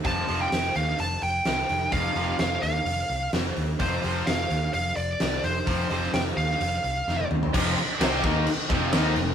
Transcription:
<<
  \new Staff \with { instrumentName = "Lead electric guitar" } { \time 4/4 \key c \dorian \tempo 4 = 128 a''8. g''8. f''8 a''8 g''4. | f''4 f''8 f''4. r4 | c''4 f''4 f''8 d''4 c''8~ | c''4 g''8 f''2 r8 |
r1 | }
  \new Staff \with { instrumentName = "Overdriven electric guitar" } { \clef bass \time 4/4 \key c \dorian r1 | r1 | r1 | r1 |
<f, c f>8 r8 <c g c'>8 <ees bes ees'>8 r8 <f, c f>8 <ees bes ees'>8 <f, c>8 | }
  \new Staff \with { instrumentName = "Distorted electric guitar" } { \clef bass \time 4/4 \key c \dorian <f, c f>8 <f, c f>8 r2. | <f, c f>8 <f, c f>8 r2. | <f, c f>8 <f, c f>8 r2. | <f, c f>8 <f, c f>8 r2. |
<f, c f>8 r8 <c g c'>8 <ees bes ees'>8 r8 <f, c f>8 <ees bes ees'>8 <f, c>8 | }
  \new Staff \with { instrumentName = "Overdriven electric guitar" } { \clef bass \time 4/4 \key c \dorian <f, c f>8 <f, c f>8 r2. | <f, c f>8 <f, c f>8 r2. | <f, c f>8 <f, c f>8 r2. | <f, c f>8 <f, c f>8 r2. |
<f, c f>8 r8 <c g c'>8 <ees bes ees'>8 r8 <f, c f>8 <ees bes ees'>8 <f, c>8 | }
  \new Staff \with { instrumentName = "Picked electric bass" } { \clef bass \time 4/4 \key c \dorian f,,8 f,,8 f,,8 ees,8 f,,8 f,,8 c,8 f,,8 | f,,8 f,,8 f,,8 ees,8 f,,8 c,8 f,,8 ees,8 | f,,8 f,,8 f,,8 ees,8 f,,8 f,,8 c,8 f,,8 | f,,8 f,,8 f,,8 ees,8 f,,8 c,8 f,,8 ees,8 |
f,,8 r8 c,8 ees,8 r8 f,,8 ees,8 f,,8 | }
  \new DrumStaff \with { instrumentName = "Drums" } \drummode { \time 4/4 <hho bd>8 hho8 <hho sn>8 hho16 sn16 hho8 hho8 <hho sn>8 hho8 | <hho bd>8 hho8 <hho sn>8 hho8 hho8 hho8 <hho sn>8 hho8 | <hho bd>8 hho8 <hho sn>8 hho8 hho8 hho8 <hho sn>8 hho8 | <hho bd>8 hho8 <hho sn>8 hho16 sn16 hho8 hho8 sn16 tommh16 toml16 tomfh16 |
<cymc bd>8 cymc8 <cymc sn>8 <cymc bd>8 cymc8 <cymc bd sn>8 <cymc sn>8 cymc8 | }
>>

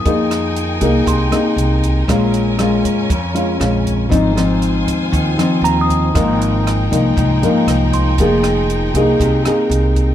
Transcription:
<<
  \new Staff \with { instrumentName = "Tine electric piano" } { \time 4/4 \key f \minor \tempo 4 = 118 ees'''8 r4. c'''2~ | c'''16 r2. r8. | r2. bes''16 ees'''8.~ | ees'''8. r2 r8. c'''8~ |
c'''8 r2. r8 | }
  \new Staff \with { instrumentName = "String section" } { \time 4/4 \key f \minor <ees' bes' g'' aes''>1 | <des' aes''>1 | <f' c'' aes''>1 | <ees' aes' bes' g''>1~ |
<ees' aes' bes' g''>1 | }
  \new Staff \with { instrumentName = "Nylon-string guitar" } { \time 4/4 \key f \minor << { <bes ees' aes'>4. <bes ees' aes'>4 <bes ees' aes'>4. | <aes des' f'>4 <aes des' f'>4 r8 <aes des' f'>8 <aes des' f'>4 | <f c' ees'>8 <f c' ees'>2 <f c' ees'>4. | <f bes ees'>4. <f bes ees'>4 <f bes ees'>4. |
<bes ees' aes'>4. <bes ees' aes'>4 <bes ees' aes'>4. | } \\ { f2 c2 | bes,2 f,2 | aes,2 ees2 | aes,2 aes,2 |
f2 c2 | } >> }
  \new Staff \with { instrumentName = "Upright bass" } { \clef bass \time 4/4 \key f \minor f,4. c,8 c,8 r8 c,4 | bes,,4. f,8 f,8 r8 bes,,4 | aes,,4. ees,8 ees,8 r8 ees,4 | aes,,4. c,8 c,8 r8 c,4 |
f,,4. c,8 c,8 r8 c,4 | }
  \new DrumStaff \with { instrumentName = "Drums" } \drummode { \time 4/4 <hh bd>8 <hh ss>8 hh8 <hh bd>8 <hh bd>8 <hh ss>8 hh8 <hh bd>8 | <hh bd ss>8 hh8 <hh ss>8 <hh bd>8 <hh bd>8 hh8 <hh ss>8 <hh bd>8 | <hh bd>8 <hh ss>8 hh8 <hh bd>8 <hh bd>8 <hh ss>8 hh8 <hh bd>8 | <hh bd ss>8 hh8 <hh ss>8 <hh bd>8 <hh bd>8 hh8 <hh ss>8 <hh bd>8 |
<hh bd>8 <hh ss>8 hh8 <hh bd>8 <hh bd>8 <hh ss>8 hh8 <hh bd>8 | }
>>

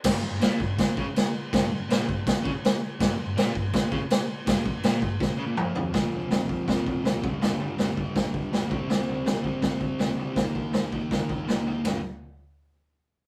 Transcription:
<<
  \new Staff \with { instrumentName = "Distorted electric guitar" } { \clef bass \time 4/4 \key g \minor \tempo 4 = 163 g,8 r16 g,16 bes,8 g,8 r8 cis16 r4 r16 | g,8 r16 g,16 bes,8 g,8 r8 cis16 r4 r16 | g,8 r16 g,16 bes,8 g,8 r8 cis16 r4 r16 | g,8 r16 g,16 bes,8 g,8 r8 cis16 bes,16 f,4 |
<f, c f>4 <f, c f>8 <c f>8 <f, c f>4 <f, c f>8 <g, d g>8 | <g, d g>4 <g, d g>8 <d g>8 <g, d g>4 <g, d g>8 <c g c'>8 | <c g c'>4 <c g c'>8 <g c'>8 <c g c'>4 <c g c'>8 <g c'>8 | <ees bes ees'>4 <ees bes ees'>8 <bes ees'>8 <ees bes ees'>4 <ees bes ees'>8 <bes ees'>8 |
<g, d g>8 r2. r8 | }
  \new DrumStaff \with { instrumentName = "Drums" } \drummode { \time 4/4 <cymc bd sn>4 <cymc sn>8 bd8 <cymc bd sn>8 bd8 <cymc sn>4 | <cymc bd sn>4 <cymc sn>8 bd8 <cymc bd sn>8 bd8 <cymc sn>4 | <cymc bd sn>4 <cymc sn>8 bd8 <cymc bd sn>8 bd8 <cymc sn>4 | <cymc bd sn>8 bd8 <cymc sn>8 bd8 <bd sn>4 toml8 tomfh8 |
<bd sn tomfh>8 tomfh8 <sn tomfh>8 <bd tomfh>8 <bd sn tomfh>8 <bd tomfh>8 <sn tomfh>8 <bd tomfh>8 | <sn tomfh>8 tomfh8 <sn tomfh>8 <bd tomfh>8 <bd sn tomfh>8 <bd tomfh>8 <sn tomfh>8 <bd tomfh>8 | <sn tomfh>8 tomfh8 <sn tomfh>8 <bd tomfh>8 <bd sn tomfh>8 <bd tomfh>8 <sn tomfh>8 tomfh8 | <bd sn tomfh>8 <bd tomfh>8 <sn tomfh>8 <bd tomfh>8 <bd sn tomfh>8 <bd tomfh>8 <sn tomfh>8 tomfh8 |
<rb sn tomfh>4 r4 r4 r4 | }
>>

